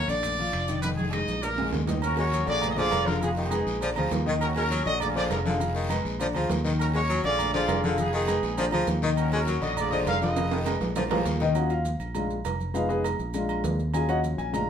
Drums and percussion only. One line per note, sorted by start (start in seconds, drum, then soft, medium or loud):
0.08 high conga soft
0.08 high timbale medium
0.08 short guiro medium
0.08 maracas medium
0.23 high conga soft
0.23 low conga medium
0.23 high timbale medium
0.23 long guiro medium
0.23 maracas loud
0.38 high conga soft
0.38 maracas soft
0.53 high conga soft
0.53 high timbale medium
0.53 short guiro medium
0.53 maracas soft
0.68 high conga medium
0.68 short guiro medium
0.68 maracas medium
0.83 high conga loud
0.83 high timbale medium
0.83 long guiro medium
0.83 maracas medium
0.98 high conga loud
0.98 maracas soft
1.13 high conga medium
1.13 high timbale loud
1.13 short guiro medium
1.13 maracas soft
1.28 high conga medium
1.28 short guiro medium
1.28 maracas medium
1.43 low conga medium
1.43 high timbale medium
1.43 long guiro medium
1.43 maracas medium
1.58 low conga medium
1.58 high timbale medium
1.58 maracas soft
1.73 low conga medium
1.73 high timbale medium
1.73 short guiro medium
1.73 maracas soft
1.88 low conga medium
1.88 low timbale medium
1.88 short guiro medium
1.88 maracas medium
2.02 high conga soft
2.02 low agogo loud
2.02 long guiro medium
2.02 maracas medium
2.17 high conga soft
2.17 low agogo medium
2.17 maracas soft
2.32 high conga medium
2.32 low timbale medium
2.32 short guiro medium
2.32 maracas medium
2.47 high conga soft
2.47 low agogo medium
2.47 short guiro medium
2.47 maracas soft
2.62 high conga soft
2.62 low conga medium
2.62 low agogo loud
2.62 long guiro medium
2.62 maracas medium
2.78 high conga soft
2.78 low conga medium
2.78 maracas soft
2.91 high conga soft
2.91 low timbale medium
2.91 low agogo loud
2.91 short guiro medium
2.91 maracas medium
3.07 high conga medium
3.07 short guiro medium
3.07 maracas soft
3.22 high conga soft
3.22 low agogo medium
3.22 long guiro medium
3.22 maracas medium
3.37 high conga soft
3.37 maracas soft
3.51 high conga medium
3.51 low timbale medium
3.51 low agogo loud
3.51 short guiro medium
3.51 maracas medium
3.67 high conga soft
3.67 short guiro medium
3.67 maracas soft
3.81 high conga soft
3.81 low agogo medium
3.81 long guiro medium
3.81 maracas medium
3.96 high conga soft
3.96 low agogo loud
3.96 maracas soft
4.11 high conga medium
4.11 low timbale medium
4.11 short guiro medium
4.11 maracas medium
4.26 high conga medium
4.26 short guiro medium
4.26 maracas soft
4.41 high conga soft
4.41 low agogo loud
4.41 long guiro medium
4.41 maracas medium
4.56 low agogo medium
4.56 maracas soft
4.71 high conga medium
4.71 low timbale medium
4.71 short guiro medium
4.71 maracas medium
4.86 high conga soft
4.86 low agogo medium
4.86 short guiro medium
4.86 maracas soft
5.00 high conga soft
5.00 low conga medium
5.00 low agogo loud
5.00 long guiro medium
5.00 maracas medium
5.16 high conga soft
5.16 maracas soft
5.30 high conga soft
5.30 low timbale medium
5.30 low agogo medium
5.30 short guiro medium
5.30 maracas medium
5.46 high conga medium
5.46 short guiro medium
5.46 maracas soft
5.60 high conga soft
5.60 low agogo medium
5.60 long guiro medium
5.60 maracas medium
5.76 maracas soft
5.90 high conga medium
5.90 low timbale medium
5.90 low agogo loud
5.90 short guiro medium
5.90 maracas medium
6.05 high conga soft
6.05 short guiro medium
6.05 maracas soft
6.20 high conga soft
6.20 low agogo medium
6.20 long guiro medium
6.20 maracas medium
6.34 high conga soft
6.34 low agogo loud
6.34 maracas soft
6.49 high conga medium
6.49 low timbale medium
6.49 short guiro medium
6.49 maracas medium
6.65 high conga medium
6.65 short guiro medium
6.65 maracas soft
6.79 high conga soft
6.79 low agogo loud
6.79 long guiro medium
6.79 maracas medium
6.94 high conga soft
6.94 low agogo medium
6.94 maracas soft
7.09 high conga medium
7.09 low timbale medium
7.09 short guiro medium
7.09 maracas medium
7.24 high conga soft
7.24 low agogo medium
7.24 short guiro medium
7.24 maracas soft
7.39 high conga soft
7.39 low conga medium
7.39 low agogo loud
7.39 long guiro medium
7.39 maracas medium
7.54 high conga soft
7.54 maracas soft
7.68 high conga soft
7.68 low timbale medium
7.68 low agogo loud
7.68 short guiro medium
7.68 maracas medium
7.83 high conga medium
7.83 short guiro medium
7.83 maracas soft
7.98 high conga soft
7.98 low agogo medium
7.98 long guiro medium
7.98 maracas medium
8.13 maracas soft
8.28 high conga medium
8.28 low timbale medium
8.28 low agogo loud
8.28 short guiro medium
8.28 maracas medium
8.43 high conga soft
8.43 short guiro medium
8.43 maracas soft
8.57 low agogo medium
8.57 long guiro medium
8.57 maracas medium
8.72 low agogo loud
8.72 maracas soft
8.87 high conga medium
8.87 low timbale medium
8.87 short guiro medium
8.87 maracas medium
9.02 high conga medium
9.02 short guiro medium
9.02 maracas soft
9.17 high conga soft
9.17 low agogo loud
9.17 long guiro medium
9.17 maracas medium
9.32 low agogo medium
9.32 maracas soft
9.47 high conga medium
9.47 low timbale medium
9.47 short guiro medium
9.47 maracas medium
9.62 high conga soft
9.62 low agogo medium
9.62 short guiro medium
9.62 maracas soft
9.77 high conga soft
9.77 low conga medium
9.77 low agogo loud
9.77 long guiro medium
9.77 maracas medium
9.92 high conga soft
9.92 low conga medium
9.92 maracas soft
10.06 high conga soft
10.06 low timbale medium
10.06 low agogo loud
10.06 short guiro medium
10.06 maracas medium
10.21 high conga medium
10.21 short guiro medium
10.21 maracas soft
10.36 high conga soft
10.36 high timbale loud
10.36 low agogo medium
10.36 long guiro medium
10.36 maracas medium
10.51 high timbale loud
10.51 maracas soft
10.66 high conga medium
10.66 high timbale loud
10.66 low agogo loud
10.66 short guiro medium
10.66 maracas medium
10.81 high conga medium
10.81 low timbale medium
10.81 short guiro medium
10.81 maracas soft
10.95 high conga medium
10.95 low timbale medium
10.95 low agogo medium
10.95 long guiro medium
10.95 maracas medium
11.11 low conga medium
11.11 low timbale loud
11.11 low agogo loud
11.11 maracas soft
11.25 low timbale medium
11.25 short guiro medium
11.25 maracas medium
11.40 low conga medium
11.40 low timbale medium
11.40 short guiro medium
11.40 maracas soft
11.55 high conga soft
11.55 low agogo loud
11.55 maracas medium
11.70 high conga soft
11.70 low agogo medium
11.70 maracas soft
11.85 high conga medium
11.85 low timbale medium
11.85 maracas medium
12.00 high conga soft
12.00 low agogo medium
12.00 maracas soft
12.15 high conga soft
12.15 low conga medium
12.15 low agogo medium
12.15 maracas medium
12.30 high conga soft
12.30 maracas soft
12.45 high conga soft
12.45 low timbale medium
12.45 low agogo loud
12.45 maracas medium
12.60 high conga medium
12.60 maracas soft
12.74 high conga soft
12.74 low agogo medium
12.74 maracas medium
12.90 high conga soft
12.90 maracas soft
13.04 high conga medium
13.04 low timbale medium
13.04 low agogo loud
13.04 maracas medium
13.19 high conga soft
13.19 maracas soft
13.34 high conga soft
13.34 low agogo medium
13.34 maracas medium
13.49 high conga soft
13.49 low agogo loud
13.49 maracas soft
13.64 high conga medium
13.64 low timbale medium
13.64 maracas medium
13.79 maracas soft
13.94 low agogo loud
13.94 maracas medium
14.09 high conga soft
14.09 low agogo medium
14.09 maracas soft
14.24 high conga medium
14.24 low timbale medium
14.24 maracas medium
14.39 high conga soft
14.39 low agogo medium
14.39 maracas soft
14.54 high conga soft
14.54 low conga medium
14.54 low agogo loud
14.54 maracas medium